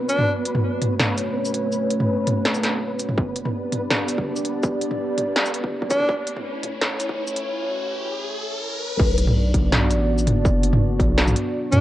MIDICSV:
0, 0, Header, 1, 7, 480
1, 0, Start_track
1, 0, Key_signature, 2, "minor"
1, 0, Tempo, 363636
1, 356, Time_signature, 4, 2, 24, 8
1, 15584, End_track
2, 0, Start_track
2, 0, Title_t, "Synth texture"
2, 0, Program_c, 0, 99
2, 0, Note_on_c, 0, 59, 86
2, 0, Note_on_c, 0, 71, 86
2, 9954, Note_off_c, 0, 59, 0
2, 9956, Note_off_c, 0, 71, 0
2, 15584, End_track
3, 0, Start_track
3, 0, Title_t, "Alto saxophone"
3, 0, Program_c, 1, 65
3, 117, Note_on_c, 1, 62, 88
3, 407, Note_off_c, 1, 62, 0
3, 7787, Note_on_c, 1, 62, 92
3, 8082, Note_off_c, 1, 62, 0
3, 15469, Note_on_c, 1, 62, 92
3, 15584, Note_off_c, 1, 62, 0
3, 15584, End_track
4, 0, Start_track
4, 0, Title_t, "Analog synth pad"
4, 0, Program_c, 2, 89
4, 0, Note_on_c, 2, 59, 81
4, 0, Note_on_c, 2, 62, 72
4, 0, Note_on_c, 2, 66, 71
4, 0, Note_on_c, 2, 74, 87
4, 315, Note_off_c, 2, 59, 0
4, 315, Note_off_c, 2, 62, 0
4, 317, Note_off_c, 2, 74, 0
4, 357, Note_on_c, 2, 57, 79
4, 357, Note_on_c, 2, 73, 86
4, 359, Note_on_c, 2, 61, 74
4, 4142, Note_off_c, 2, 66, 0
4, 4158, Note_off_c, 2, 57, 0
4, 4158, Note_off_c, 2, 73, 0
4, 4159, Note_off_c, 2, 61, 0
4, 4187, Note_on_c, 2, 62, 75
4, 4188, Note_on_c, 2, 67, 73
4, 4189, Note_on_c, 2, 59, 82
4, 4189, Note_on_c, 2, 74, 87
4, 7993, Note_off_c, 2, 62, 0
4, 7994, Note_off_c, 2, 59, 0
4, 7994, Note_off_c, 2, 67, 0
4, 7994, Note_off_c, 2, 74, 0
4, 8030, Note_on_c, 2, 64, 74
4, 8031, Note_on_c, 2, 57, 84
4, 8032, Note_on_c, 2, 61, 75
4, 8032, Note_on_c, 2, 73, 95
4, 11835, Note_off_c, 2, 57, 0
4, 11835, Note_off_c, 2, 64, 0
4, 11836, Note_off_c, 2, 61, 0
4, 11836, Note_off_c, 2, 73, 0
4, 11870, Note_on_c, 2, 59, 84
4, 11871, Note_on_c, 2, 62, 74
4, 11873, Note_on_c, 2, 66, 73
4, 11874, Note_on_c, 2, 74, 90
4, 15584, Note_off_c, 2, 59, 0
4, 15584, Note_off_c, 2, 62, 0
4, 15584, Note_off_c, 2, 66, 0
4, 15584, Note_off_c, 2, 74, 0
4, 15584, End_track
5, 0, Start_track
5, 0, Title_t, "Sub bass"
5, 0, Program_c, 3, 38
5, 11875, Note_on_c, 3, 35, 97
5, 12581, Note_off_c, 3, 35, 0
5, 12594, Note_on_c, 3, 35, 94
5, 13074, Note_on_c, 3, 33, 89
5, 13093, Note_off_c, 3, 35, 0
5, 13555, Note_on_c, 3, 30, 88
5, 13574, Note_off_c, 3, 33, 0
5, 14517, Note_on_c, 3, 35, 92
5, 14537, Note_off_c, 3, 30, 0
5, 14982, Note_off_c, 3, 35, 0
5, 15478, Note_on_c, 3, 42, 105
5, 15584, Note_off_c, 3, 42, 0
5, 15584, End_track
6, 0, Start_track
6, 0, Title_t, "Riser"
6, 0, Program_c, 4, 103
6, 4193, Note_on_c, 4, 60, 77
6, 11875, Note_off_c, 4, 60, 0
6, 15584, End_track
7, 0, Start_track
7, 0, Title_t, "Drums"
7, 120, Note_on_c, 9, 42, 68
7, 120, Note_on_c, 9, 82, 64
7, 244, Note_on_c, 9, 45, 54
7, 252, Note_off_c, 9, 42, 0
7, 252, Note_off_c, 9, 82, 0
7, 376, Note_off_c, 9, 45, 0
7, 599, Note_on_c, 9, 42, 80
7, 723, Note_on_c, 9, 45, 49
7, 731, Note_off_c, 9, 42, 0
7, 855, Note_off_c, 9, 45, 0
7, 1077, Note_on_c, 9, 42, 68
7, 1077, Note_on_c, 9, 45, 51
7, 1209, Note_off_c, 9, 42, 0
7, 1209, Note_off_c, 9, 45, 0
7, 1313, Note_on_c, 9, 38, 126
7, 1313, Note_on_c, 9, 45, 74
7, 1445, Note_off_c, 9, 38, 0
7, 1445, Note_off_c, 9, 45, 0
7, 1554, Note_on_c, 9, 42, 82
7, 1554, Note_on_c, 9, 82, 36
7, 1686, Note_off_c, 9, 42, 0
7, 1686, Note_off_c, 9, 82, 0
7, 1918, Note_on_c, 9, 82, 62
7, 2035, Note_on_c, 9, 42, 67
7, 2050, Note_off_c, 9, 82, 0
7, 2167, Note_off_c, 9, 42, 0
7, 2274, Note_on_c, 9, 82, 36
7, 2406, Note_off_c, 9, 82, 0
7, 2515, Note_on_c, 9, 42, 79
7, 2642, Note_on_c, 9, 45, 51
7, 2647, Note_off_c, 9, 42, 0
7, 2774, Note_off_c, 9, 45, 0
7, 2998, Note_on_c, 9, 42, 65
7, 2998, Note_on_c, 9, 45, 52
7, 3130, Note_off_c, 9, 42, 0
7, 3130, Note_off_c, 9, 45, 0
7, 3237, Note_on_c, 9, 38, 118
7, 3359, Note_on_c, 9, 82, 60
7, 3369, Note_off_c, 9, 38, 0
7, 3478, Note_on_c, 9, 38, 66
7, 3478, Note_on_c, 9, 42, 80
7, 3491, Note_off_c, 9, 82, 0
7, 3610, Note_off_c, 9, 38, 0
7, 3610, Note_off_c, 9, 42, 0
7, 3954, Note_on_c, 9, 42, 65
7, 3954, Note_on_c, 9, 82, 66
7, 4077, Note_on_c, 9, 45, 47
7, 4086, Note_off_c, 9, 42, 0
7, 4086, Note_off_c, 9, 82, 0
7, 4195, Note_on_c, 9, 36, 116
7, 4209, Note_off_c, 9, 45, 0
7, 4327, Note_off_c, 9, 36, 0
7, 4433, Note_on_c, 9, 42, 76
7, 4559, Note_on_c, 9, 45, 51
7, 4565, Note_off_c, 9, 42, 0
7, 4691, Note_off_c, 9, 45, 0
7, 4916, Note_on_c, 9, 42, 63
7, 4916, Note_on_c, 9, 45, 52
7, 5048, Note_off_c, 9, 42, 0
7, 5048, Note_off_c, 9, 45, 0
7, 5156, Note_on_c, 9, 38, 122
7, 5156, Note_on_c, 9, 45, 74
7, 5288, Note_off_c, 9, 38, 0
7, 5288, Note_off_c, 9, 45, 0
7, 5393, Note_on_c, 9, 42, 79
7, 5393, Note_on_c, 9, 82, 39
7, 5521, Note_on_c, 9, 36, 63
7, 5525, Note_off_c, 9, 42, 0
7, 5525, Note_off_c, 9, 82, 0
7, 5653, Note_off_c, 9, 36, 0
7, 5758, Note_on_c, 9, 82, 66
7, 5873, Note_on_c, 9, 42, 64
7, 5890, Note_off_c, 9, 82, 0
7, 6005, Note_off_c, 9, 42, 0
7, 6115, Note_on_c, 9, 82, 40
7, 6116, Note_on_c, 9, 36, 112
7, 6247, Note_off_c, 9, 82, 0
7, 6248, Note_off_c, 9, 36, 0
7, 6354, Note_on_c, 9, 42, 72
7, 6480, Note_on_c, 9, 45, 53
7, 6486, Note_off_c, 9, 42, 0
7, 6612, Note_off_c, 9, 45, 0
7, 6835, Note_on_c, 9, 42, 66
7, 6835, Note_on_c, 9, 45, 55
7, 6967, Note_off_c, 9, 42, 0
7, 6967, Note_off_c, 9, 45, 0
7, 7074, Note_on_c, 9, 38, 112
7, 7201, Note_on_c, 9, 82, 65
7, 7206, Note_off_c, 9, 38, 0
7, 7312, Note_on_c, 9, 42, 74
7, 7333, Note_off_c, 9, 82, 0
7, 7441, Note_on_c, 9, 36, 58
7, 7444, Note_off_c, 9, 42, 0
7, 7573, Note_off_c, 9, 36, 0
7, 7681, Note_on_c, 9, 36, 61
7, 7794, Note_on_c, 9, 42, 64
7, 7794, Note_on_c, 9, 82, 69
7, 7796, Note_off_c, 9, 36, 0
7, 7796, Note_on_c, 9, 36, 105
7, 7919, Note_on_c, 9, 45, 52
7, 7926, Note_off_c, 9, 42, 0
7, 7926, Note_off_c, 9, 82, 0
7, 7928, Note_off_c, 9, 36, 0
7, 8035, Note_on_c, 9, 36, 108
7, 8051, Note_off_c, 9, 45, 0
7, 8167, Note_off_c, 9, 36, 0
7, 8274, Note_on_c, 9, 42, 76
7, 8401, Note_on_c, 9, 45, 54
7, 8406, Note_off_c, 9, 42, 0
7, 8533, Note_off_c, 9, 45, 0
7, 8754, Note_on_c, 9, 42, 67
7, 8754, Note_on_c, 9, 45, 56
7, 8886, Note_off_c, 9, 42, 0
7, 8886, Note_off_c, 9, 45, 0
7, 8994, Note_on_c, 9, 38, 116
7, 8994, Note_on_c, 9, 45, 82
7, 9126, Note_off_c, 9, 38, 0
7, 9126, Note_off_c, 9, 45, 0
7, 9237, Note_on_c, 9, 42, 78
7, 9237, Note_on_c, 9, 82, 41
7, 9360, Note_on_c, 9, 36, 60
7, 9369, Note_off_c, 9, 42, 0
7, 9369, Note_off_c, 9, 82, 0
7, 9492, Note_off_c, 9, 36, 0
7, 9599, Note_on_c, 9, 82, 68
7, 9717, Note_on_c, 9, 42, 67
7, 9731, Note_off_c, 9, 82, 0
7, 9849, Note_off_c, 9, 42, 0
7, 11876, Note_on_c, 9, 36, 121
7, 11876, Note_on_c, 9, 49, 105
7, 12008, Note_off_c, 9, 36, 0
7, 12008, Note_off_c, 9, 49, 0
7, 12116, Note_on_c, 9, 42, 80
7, 12243, Note_on_c, 9, 45, 54
7, 12248, Note_off_c, 9, 42, 0
7, 12375, Note_off_c, 9, 45, 0
7, 12595, Note_on_c, 9, 36, 61
7, 12596, Note_on_c, 9, 42, 69
7, 12727, Note_off_c, 9, 36, 0
7, 12728, Note_off_c, 9, 42, 0
7, 12836, Note_on_c, 9, 38, 126
7, 12836, Note_on_c, 9, 45, 86
7, 12968, Note_off_c, 9, 38, 0
7, 12968, Note_off_c, 9, 45, 0
7, 13077, Note_on_c, 9, 42, 85
7, 13077, Note_on_c, 9, 82, 38
7, 13209, Note_off_c, 9, 42, 0
7, 13209, Note_off_c, 9, 82, 0
7, 13443, Note_on_c, 9, 82, 65
7, 13558, Note_on_c, 9, 42, 71
7, 13558, Note_on_c, 9, 45, 55
7, 13575, Note_off_c, 9, 82, 0
7, 13690, Note_off_c, 9, 42, 0
7, 13690, Note_off_c, 9, 45, 0
7, 13795, Note_on_c, 9, 36, 118
7, 13800, Note_on_c, 9, 82, 36
7, 13927, Note_off_c, 9, 36, 0
7, 13932, Note_off_c, 9, 82, 0
7, 14037, Note_on_c, 9, 42, 84
7, 14164, Note_on_c, 9, 45, 83
7, 14169, Note_off_c, 9, 42, 0
7, 14296, Note_off_c, 9, 45, 0
7, 14515, Note_on_c, 9, 36, 107
7, 14520, Note_on_c, 9, 42, 71
7, 14647, Note_off_c, 9, 36, 0
7, 14652, Note_off_c, 9, 42, 0
7, 14756, Note_on_c, 9, 38, 124
7, 14885, Note_on_c, 9, 45, 53
7, 14885, Note_on_c, 9, 82, 64
7, 14888, Note_off_c, 9, 38, 0
7, 14998, Note_on_c, 9, 42, 83
7, 15017, Note_off_c, 9, 45, 0
7, 15017, Note_off_c, 9, 82, 0
7, 15130, Note_off_c, 9, 42, 0
7, 15479, Note_on_c, 9, 42, 71
7, 15479, Note_on_c, 9, 45, 84
7, 15479, Note_on_c, 9, 82, 63
7, 15584, Note_off_c, 9, 42, 0
7, 15584, Note_off_c, 9, 45, 0
7, 15584, Note_off_c, 9, 82, 0
7, 15584, End_track
0, 0, End_of_file